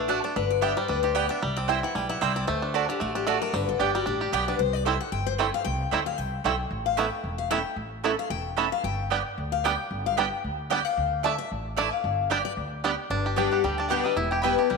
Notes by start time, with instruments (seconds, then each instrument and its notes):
Already playing: upright bass A1
0.00 five-string banjo A3
0.08 mandolin A3 F#4 D5 A5, five-string banjo D4, steel-string acoustic guitar F#4
0.24 five-string banjo D4, steel-string acoustic guitar A4
0.36 upright bass G1, five-string banjo D3, steel-string acoustic guitar B4
0.50 steel-string acoustic guitar D5
0.61 mandolin B3 G4 D5 G5, five-string banjo D4, steel-string acoustic guitar E5
0.77 five-string banjo G3, steel-string acoustic guitar C5
0.88 upright bass D2, five-string banjo D4, steel-string acoustic guitar B4
1.03 five-string banjo G4, steel-string acoustic guitar C5
1.15 mandolin B3 G4 D5 G5, five-string banjo B3, steel-string acoustic guitar D5
1.29 five-string banjo D4, steel-string acoustic guitar E5
1.42 upright bass C2, five-string banjo G3
1.56 five-string banjo C4, steel-string acoustic guitar D5
1.68 mandolin C4 E4 C5 G5, five-string banjo E4, steel-string acoustic guitar E5
1.83 five-string banjo E3, steel-string acoustic guitar F#5
1.95 upright bass B1, five-string banjo G3, steel-string acoustic guitar G5
2.09 five-string banjo E4, steel-string acoustic guitar F#5
2.21 upright bass C2, five-string banjo G3, mandolin C4 E4 C5 G5, steel-string acoustic guitar E5
2.36 five-string banjo C4, steel-string acoustic guitar D5
2.47 upright bass D2, five-string banjo A3, steel-string acoustic guitar C5
2.62 five-string banjo D4
2.74 mandolin A3 F#4 D5 A5, five-string banjo D4
2.89 five-string banjo D3, steel-string acoustic guitar G4
3.00 upright bass A1, five-string banjo A3, steel-string acoustic guitar F#4
3.15 five-string banjo D4, steel-string acoustic guitar G4
3.27 five-string banjo A3, mandolin A3 F#4 D5 A5, steel-string acoustic guitar A4
3.42 five-string banjo D4, steel-string acoustic guitar A#4
3.53 upright bass G1, five-string banjo D3, steel-string acoustic guitar B4
3.69 steel-string acoustic guitar A4
3.79 upright bass G1, mandolin B3 G4 D5 G5, five-string banjo D4, steel-string acoustic guitar G4
3.95 five-string banjo G3, steel-string acoustic guitar F#4
4.06 upright bass A1, five-string banjo D4, steel-string acoustic guitar G4
4.21 five-string banjo G4
4.32 upright bass B1, mandolin B3 G4 D5 G5, five-string banjo B3, steel-string acoustic guitar D5
4.48 five-string banjo D4, steel-string acoustic guitar B4
4.59 upright bass C2, steel-string acoustic guitar C5
4.73 steel-string acoustic guitar D5
4.85 five-string banjo G3 C4 E4, mandolin A3 E4 C5 G5, steel-string acoustic guitar E5
5.01 steel-string acoustic guitar F#5
5.12 upright bass G1, steel-string acoustic guitar G5
5.26 steel-string acoustic guitar C5
5.38 five-string banjo G3 C4 E4, mandolin A3 E4 C5 G5
5.54 steel-string acoustic guitar F5
5.65 upright bass C2, steel-string acoustic guitar G5
5.91 upright bass D2, five-string banjo G3 C4 E4, mandolin A3 E4 C5 G5
6.06 steel-string acoustic guitar F5
6.18 upright bass C2, steel-string acoustic guitar G5
6.44 upright bass B1, five-string banjo G3 C4 E4, mandolin A3 E4 C5 G5
6.71 upright bass A1
6.86 steel-string acoustic guitar F5
6.97 five-string banjo A3 B3 E4, mandolin C#4 A4 E5 B5, steel-string acoustic guitar G5
7.24 upright bass E1
7.38 steel-string acoustic guitar F5
7.50 five-string banjo A3 B3 E4, mandolin C#4 A4 E5 B5, steel-string acoustic guitar G5
7.76 upright bass A1
8.04 five-string banjo A3 B3 E4, mandolin C#4 A4 E5 B5
8.19 steel-string acoustic guitar F5
8.30 upright bass E1, steel-string acoustic guitar G5
8.57 five-string banjo A3 B3 E4, mandolin C#4 A4 E5 B5
8.72 steel-string acoustic guitar F5
8.84 upright bass G1, steel-string acoustic guitar G5
9.10 five-string banjo G3 B3 D4, mandolin B3 G4 D5 G5
9.38 upright bass D2
9.52 steel-string acoustic guitar F5
9.64 five-string banjo G3 B3 D4, mandolin B3 G4 D5 G5, steel-string acoustic guitar G5
9.91 upright bass G1
10.06 steel-string acoustic guitar F5
10.17 five-string banjo G3 B3 D4, mandolin B3 G4 D5 G5, steel-string acoustic guitar G5
10.44 upright bass D2
10.70 five-string banjo G3 B3 D4, mandolin B3 G4 D5 G5, steel-string acoustic guitar D5
10.85 steel-string acoustic guitar F5
10.97 upright bass D2
11.23 mandolin A3 E4 D5 A5, five-string banjo A3 D4, steel-string acoustic guitar E5
11.38 steel-string acoustic guitar E5
11.52 upright bass A1
11.77 mandolin A3 E4 D5 A5, five-string banjo A3 D4, steel-string acoustic guitar D5
11.92 steel-string acoustic guitar F5
12.04 upright bass G1
12.30 five-string banjo G3 B3 D4, mandolin B3 G4 D5 G5, steel-string acoustic guitar D5
12.45 steel-string acoustic guitar D5
12.57 upright bass D2
12.84 five-string banjo G3 B3 D4, mandolin B3 G4 D5 G5
13.10 upright bass G1, steel-string acoustic guitar G2, five-string banjo D4
13.26 five-string banjo G4
13.36 steel-string acoustic guitar G3 B3 D4 G4, mandolin B3 G4 D5 G5 A5, five-string banjo D4
13.51 five-string banjo G4, mandolin F#5
13.64 upright bass D2, steel-string acoustic guitar D3, five-string banjo G3, mandolin G5
13.78 five-string banjo D4, mandolin A5
13.89 steel-string acoustic guitar G3 B3 D4 G4, mandolin B3 G4 D5 F#5 G5, five-string banjo G4
14.04 five-string banjo G3, steel-string acoustic guitar D4 G4, mandolin D#5
14.16 upright bass E1, steel-string acoustic guitar E2, five-string banjo E4, mandolin E5
14.31 five-string banjo G4, mandolin G5
14.42 steel-string acoustic guitar E3 G3 B3 E4, mandolin B3 E4 B4 G5 B5, five-string banjo E4
14.58 steel-string acoustic guitar B3 E4, five-string banjo G4, mandolin A5
14.70 upright bass B1, steel-string acoustic guitar F#2, five-string banjo G3, mandolin G5